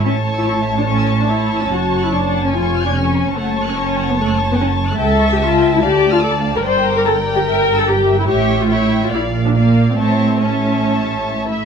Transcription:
<<
  \new Staff \with { instrumentName = "Violin section" } { \time 4/4 \key fis \minor \tempo 4 = 145 << { e''16 a''16 cis'''16 e'''16 cis'''16 a''16 e''16 a''16 cis'''16 e'''16 cis'''16 a''16 e''16 a''16 cis'''16 e'''16 | fis''16 a''16 cis'''16 fis'''16 cis'''16 a''16 fis''16 a''16 gis''16 cis'''16 eis'''16 gis'''16 eis'''16 cis'''16 gis''16 cis'''16 | fis''16 a''16 cis'''16 fis'''16 cis'''16 a''16 fis''16 a''16 cis'''16 fis'''16 cis'''16 a''16 fis''16 a''16 cis'''16 fis'''16 | \key a \phrygian g''16 a''16 cis'''16 e'''16 cis'''16 a''16 g''16 a''16 f''16 a''16 d'''16 f'''16 d'''16 a''16 f''16 a''16 |
d''16 g''16 bes''16 d'''16 bes''16 g''16 d''16 g''16 e''16 g''16 bes''16 e'''16 bes''16 g''16 e''16 g''16 | e''4 e''4 d''4 d''4 | e''4 e''2~ e''8 e'8 | } \\ { cis''1~ | cis''1 | cis''1 | e''2 d''2 |
bes'1 | cis''4 cis''4 d''4 d''4 | cis''4 cis''2~ cis''8 r8 | } >> }
  \new Staff \with { instrumentName = "Violin section" } { \time 4/4 \key fis \minor a''1~ | a''2 gis''2 | a''1~ | \key a \phrygian a''1 |
g''1 | g''4 g''4 f''4 f''4 | a''4 a''2~ a''8 e''8 | }
  \new Staff \with { instrumentName = "Viola section" } { \time 4/4 \key fis \minor cis'8. e'16 e'8. d'16 cis'8. d'16 e'8. cis'16 | fis'8. e'16 d'8. cis'16 eis'8. d'16 cis'4 | a8. cis'16 cis'8. b16 a8. b16 cis'8. a16 | \key a \phrygian a'8. g'16 f'8. e'16 g'8. f'16 a'8. bes'16 |
c''8. bes'16 a'8. g'16 bes'8. a'16 g'8. e'16 | g'8. f'16 e'8. f'16 e'8. d'16 bes8. c'16 | c'4 cis'2 r4 | }
  \new Staff \with { instrumentName = "Cello section" } { \clef bass \time 4/4 \key fis \minor a,1 | fis,2 eis,2 | fis,1 | \key a \phrygian cis,2 d,2 |
g,1 | a,2 bes,2 | a,2.~ a,8 r8 | }
  \new Staff \with { instrumentName = "Double bass section" } { \clef bass \time 4/4 \key fis \minor a,,1 | fis,,2 eis,,2 | fis,,1 | \key a \phrygian cis,2 d,2 |
g,,1 | a,,2 bes,,2 | a,,2.~ a,,8 r8 | }
>>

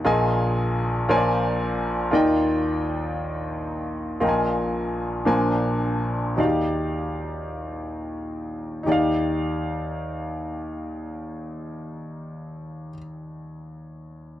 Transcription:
\new Staff \with { instrumentName = "Grand piano" } { \time 6/8 \key ees \major \tempo 4. = 53 <bes,, bes, f' aes' bes' ees'' aes''>4. <bes,, bes, f' bes' c'' des'' d'' aes''>4. | <ees, ees f' bes' d'' ees'' g''>2. | <bes,, bes, f' bes' ees'' g'' aes''>4. <bes,, bes, d' bes' c'' aes''>4. | <ees, ees ees' ges' g' d'' f''>2. |
<ees, ees' g' d'' f''>2.~ | <ees, ees' g' d'' f''>2. | }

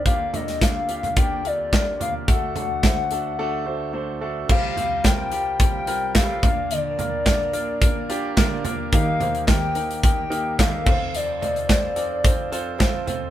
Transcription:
<<
  \new Staff \with { instrumentName = "Soft synth lead" } { \time 4/4 \key bes \major \tempo 4 = 108 f''8 ees''8 f''4 g''8 d''4 f''8 | fis''2.~ fis''8 r8 | f''4 g''4 g''4 f''4 | d''2. r4 |
f''4 g''4 g''4 f''4 | d''2. r4 | }
  \new Staff \with { instrumentName = "Grand piano" } { \time 4/4 \key bes \major <bes d' f' g'>8 <bes d' f' a'>8 <bes d' f' a'>8 <bes d' f' g'>8 <bes d' f' g'>8 <bes d' f' a'>8 <bes d' f' bes'>8 <bes d' f' bes'>8 | <a d' fis' a'>8 <a d' fis' a'>8 <a d' fis' c''>8 <a d' fis' a'>8 <a d' fis' a'>8 <a d' fis' c''>8 <a d' fis' c''>8 <a d' fis' a'>8 | <g c' f' g'>8 <g c' f' g'>8 <g c' f' bes'>8 <g c' f' g'>8 <g c' f' g'>8 <g c' f' bes'>8 <g c' f' a'>8 <bes d' f' bes'>8~ | <bes d' f' bes'>8 <bes d' f' bes'>8 <bes d' f' bes'>8 <bes d' f' bes'>8 <bes d' f' bes'>8 <bes d' f' g'>8 <bes d' f' bes'>8 <bes d' f' bes'>8 |
<bes ees' g' bes'>8 <bes ees' g' c''>8 <bes ees' g' bes'>8 <bes ees' g' bes'>8 <bes ees' g' bes'>8 <bes ees' g' bes'>8 <bes ees' g' a'>8 <c' f' a' c''>8~ | <c' f' a' c''>8 <c' f' a' ees''>8 <c' f' a' c''>8 <c' f' a' d''>8 <c' f' a' c''>8 <c' f' a' c''>8 <c' f' a' c''>8 <c' f' a' c''>8 | }
  \new Staff \with { instrumentName = "Grand piano" } { \clef bass \time 4/4 \key bes \major <d, d>1 | <d, d>1 | <c, c>2.~ <c, c>8 <bes,, bes,>8~ | <bes,, bes,>2.~ <bes,, bes,>8 r8 |
<ees, ees>2.~ <ees, ees>8 <f,, f,>8~ | <f,, f,>2.~ <f,, f,>8 r8 | }
  \new Staff \with { instrumentName = "Steel-string acoustic guitar" } { \time 4/4 \key bes \major r1 | r1 | <c f c' f' g'>8 <c' f'>8 <c f c' f' g'>8 <c' f' g'>8 <f c' f' g'>4 <c f c' f' g'>8 <f bes d' bes'>8 | <bes, d f bes d' bes'>8 <f bes d' bes'>8 <bes, d f bes d' bes'>8 <f bes d' bes'>8 <f bes d' bes'>4 <bes, d f bes d' bes'>8 <f bes d' bes'>8 |
<ees g bes ees' bes'>8 <bes ees' bes'>8 <ees g bes ees' bes'>8 <bes ees' bes'>8 <g bes ees' bes'>4 <ees g bes ees' bes'>8 <c' f' a'>8 | <f c' f' a'>8 <c' f' a'>8 <f c' f' a'>8 <c' f' a'>8 <f c' f' a'>4 <f c' f' a'>8 <c' f' a'>8 | }
  \new Staff \with { instrumentName = "Tonewheel organ" } { \time 4/4 \key bes \major <c' f' g'>1 | <a fis' a'>1 | <f' g' g''>2.~ <f' g' g''>8 <d' bes' f''>8~ | <d' bes' f''>1 |
<bes g'>2.~ <bes g'>8 <c' a' c''>8~ | <c' a' c''>1 | }
  \new Staff \with { instrumentName = "Tonewheel organ" } { \clef bass \time 4/4 \key bes \major <d, d>1~ | <d, d>1 | <c, c>2.~ <c, c>8 <bes, f>8~ | <bes, f>1 |
<ees, ees>2.~ <ees, ees>8 <f, f>8~ | <f, f>1 | }
  \new DrumStaff \with { instrumentName = "Drums" } \drummode { \time 4/4 <hh bd>8 <hh tomfh>16 <hh sn>16 <hc hh bd sn>8 hh16 <hh tomfh>16 <hh bd>8 hh8 <hc hh bd sn>8 <hh tomfh>8 | <hh bd>8 <hh tomfh>8 <hc hh bd sn>8 hh8 r4 r4 | <cymc bd>8 <hh tomfh>8 <hc hh bd sn>8 hh8 <hh bd>8 hh8 <hc hh bd sn>8 <hh bd tomfh>8 | hh8 <hh tomfh>8 <hc hh bd sn>8 hh8 <hh bd>8 hh8 <hc hh bd sn>8 <hh tomfh>8 |
<hh bd>8 <hh tomfh>16 hh16 <hc hh bd sn>8 hh16 hh16 <hh bd>8 hh8 <hc hh bd sn>8 <cymc bd tomfh>8 | hh8 <hh tomfh>16 hh16 <hc hh bd sn>8 hh8 <hh bd>8 hh8 <hc hh bd sn>8 <hh tomfh>8 | }
>>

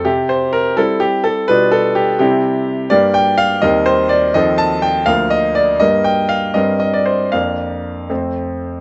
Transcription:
<<
  \new Staff \with { instrumentName = "Grand piano" } { \time 6/8 \key c \mixolydian \tempo 4. = 83 g'8 c''8 bes'8 a'8 g'8 a'8 | b'8 a'8 g'8 g'4 r8 | \key bes \major d''8 g''8 f''8 ees''8 c''8 d''8 | ees''8 a''8 g''8 f''8 ees''8 d''8 |
ees''8 g''8 f''8 ees''8 ees''16 d''16 c''8 | f''4. r4. | }
  \new Staff \with { instrumentName = "Grand piano" } { \time 6/8 \key c \mixolydian c4. <g c' e'>4. | <b, g d' f'>4. <c g c' e'>4. | \key bes \major <g, g bes g'>4. <ees, g c' bes'>4. | <ees, f c' a'>4. <d, f bes bes'>4. |
<g, g bes bes'>4. <g, g c' bes'>4. | <f, bes d' bes'>4. <f, a c' c''>4. | }
>>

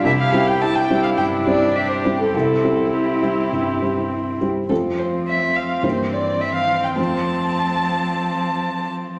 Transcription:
<<
  \new Staff \with { instrumentName = "Violin" } { \time 4/4 \key f \major \tempo 4 = 106 e''16 f''8 g''16 a''16 g''8 f''16 g''8 d''8 e''16 c''8 a'16 | a'4 g'2 r4 | a'8 c''8 e''8 f''8 c''8 d''8 e''16 f''8 g''16 | a''2.~ a''8 r8 | }
  \new Staff \with { instrumentName = "Cello" } { \time 4/4 \key f \major g'4 e'2 g'4 | e'2.~ e'8 r8 | f2 e2 | f1 | }
  \new Staff \with { instrumentName = "Viola" } { \time 4/4 \key f \major e'4 d'2. | c'2.~ c'8 r8 | c'1~ | c'1 | }
  \new Staff \with { instrumentName = "Grand piano" } { \time 4/4 \key f \major c,8 <g c' e'>4 <g c' e'>8 g,8 <g c' e'>4 <g c' e'>8 | c,8 <g c' e'>4 <g c' e'>8 g,8 <g c' e'>4 <g c' e'>8 | <f, a c' f'>2 <g, bes c' e'>2 | <f, a c' f'>1 | }
>>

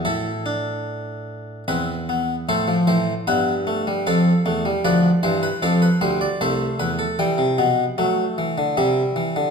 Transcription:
<<
  \new Staff \with { instrumentName = "Harpsichord" } { \time 3/4 \key a \minor \tempo 4 = 76 << { e''2 e''4 | c''4 e''4 f''4 | d''4 f''4 e''4 | \key e \minor g''2 e''4 | } \\ { a'2 b'4 | a'8 c''8 b'4 a'4 | b'8 c''16 b'16 a'16 b'16 c''16 d''16 c''8 b'16 a'16 | r2. | } >> }
  \new Staff \with { instrumentName = "Harpsichord" } { \clef bass \time 3/4 \key a \minor << { e'8 d'4. c'8 b8 | a16 f16 e8 b8 a16 g16 f8 a16 g16 | f8 e8 f8 g8 a4 | \key e \minor g8 b8 a4 g4 | } \\ { a,2 e,4 | a,8 a,8 g,4 f,8 e,8 | d,8 g,8 f,8 d,8 c,8 e,8 | e16 c16 b,8 fis8 e16 d16 c8 e16 d16 | } >> }
>>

